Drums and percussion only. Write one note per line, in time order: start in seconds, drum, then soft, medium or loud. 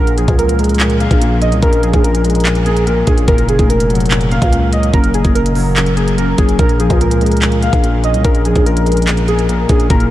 0.07 closed hi-hat medium
0.18 closed hi-hat medium
0.28 kick medium
0.28 closed hi-hat medium
0.39 closed hi-hat medium
0.49 closed hi-hat medium
0.59 closed hi-hat medium
0.64 closed hi-hat medium
0.69 closed hi-hat medium
0.75 closed hi-hat medium
0.80 clap loud
0.80 closed hi-hat medium
0.90 closed hi-hat medium
1.00 closed hi-hat medium
1.11 kick medium
1.11 closed hi-hat medium
1.22 closed hi-hat medium
1.42 closed hi-hat medium
1.52 closed hi-hat medium
1.62 kick loud
1.62 closed hi-hat medium
1.73 closed hi-hat medium
1.83 closed hi-hat medium
1.93 kick medium
1.93 closed hi-hat medium
2.04 closed hi-hat medium
2.15 closed hi-hat medium
2.24 closed hi-hat medium
2.24 open hi-hat medium
2.30 closed hi-hat medium
2.35 closed hi-hat medium
2.40 closed hi-hat medium
2.45 clap loud
2.45 closed hi-hat medium
2.55 closed hi-hat medium
2.66 closed hi-hat medium
2.77 closed hi-hat medium
2.87 closed hi-hat medium
3.07 kick medium
3.07 closed hi-hat medium
3.18 closed hi-hat medium
3.28 kick loud
3.28 closed hi-hat medium
3.38 closed hi-hat medium
3.49 closed hi-hat medium
3.59 kick medium
3.59 closed hi-hat medium
3.70 closed hi-hat medium
3.80 closed hi-hat medium
3.90 closed hi-hat medium
3.95 closed hi-hat medium
4.00 closed hi-hat medium
4.06 closed hi-hat medium
4.11 clap loud
4.11 closed hi-hat medium
4.21 closed hi-hat medium
4.31 closed hi-hat medium
4.42 kick medium
4.42 closed hi-hat medium
4.53 closed hi-hat medium
4.73 closed hi-hat medium
4.83 closed hi-hat medium
4.93 kick loud
4.93 closed hi-hat medium
5.04 closed hi-hat medium
5.14 closed hi-hat medium
5.25 kick medium
5.25 closed hi-hat medium
5.36 closed hi-hat medium
5.46 closed hi-hat medium
5.55 open hi-hat medium
5.76 clap loud
5.76 closed hi-hat medium
5.86 closed hi-hat medium
5.97 closed hi-hat medium
6.08 closed hi-hat medium
6.18 closed hi-hat medium
6.38 kick loud
6.38 closed hi-hat medium
6.49 closed hi-hat medium
6.59 kick loud
6.59 closed hi-hat medium
6.69 closed hi-hat medium
6.80 closed hi-hat medium
6.90 kick medium
6.90 closed hi-hat medium
7.01 closed hi-hat medium
7.11 closed hi-hat medium
7.21 closed hi-hat medium
7.26 closed hi-hat medium
7.32 closed hi-hat medium
7.37 closed hi-hat medium
7.42 clap loud
7.42 closed hi-hat medium
7.52 closed hi-hat medium
7.62 closed hi-hat medium
7.73 kick medium
7.73 closed hi-hat medium
7.84 closed hi-hat medium
8.04 closed hi-hat medium
8.14 closed hi-hat medium
8.24 kick loud
8.24 closed hi-hat medium
8.35 closed hi-hat medium
8.45 closed hi-hat medium
8.55 kick medium
8.55 closed hi-hat medium
8.66 closed hi-hat medium
8.77 closed hi-hat medium
8.86 closed hi-hat medium
8.86 open hi-hat medium
8.92 closed hi-hat medium
8.97 closed hi-hat medium
9.02 closed hi-hat medium
9.07 clap loud
9.07 closed hi-hat medium
9.17 closed hi-hat medium
9.28 closed hi-hat medium
9.39 closed hi-hat medium
9.49 closed hi-hat medium
9.69 kick loud
9.69 closed hi-hat medium
9.80 closed hi-hat medium
9.90 kick loud
9.90 closed hi-hat medium
10.00 closed hi-hat medium